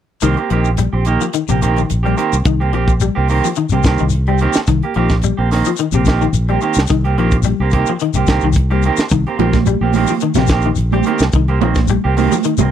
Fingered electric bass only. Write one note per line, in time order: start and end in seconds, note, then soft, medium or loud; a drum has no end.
0.23 0.35 C2 medium
0.51 0.86 A#1 medium
0.93 1.16 A#1 medium
1.49 1.83 A#1 medium
1.91 2.14 A#1 medium
2.33 2.44 C2 medium
2.45 2.73 C2 medium
2.73 3.09 A#1 medium
3.17 3.40 C2 medium
3.72 3.83 C2 medium
3.85 3.97 C2 medium
4.01 4.46 C2 medium
4.57 muted fingered electric bass stroke soft
4.68 4.80 C2 medium
4.96 5.31 A#1 medium
5.38 5.61 A#1 medium
5.92 6.27 A#1 medium
6.33 6.56 A#1 medium
6.76 6.88 C2 medium
6.90 7.18 C2 medium
7.18 7.53 A#1 medium
7.60 7.83 C2 medium
8.15 8.26 C2 medium
8.28 8.40 C2 medium
8.43 8.89 C2 medium
8.98 muted fingered electric bass stroke soft
9.12 9.24 C2 medium
9.39 9.74 A#1 medium
9.81 10.04 A#1 medium
10.37 10.71 A#1 medium
10.78 11.01 A#1 medium
11.20 11.31 C2 medium
11.33 11.61 C2 medium
11.61 11.97 A#1 medium
12.05 12.28 C2 medium
12.59 12.70 C2 medium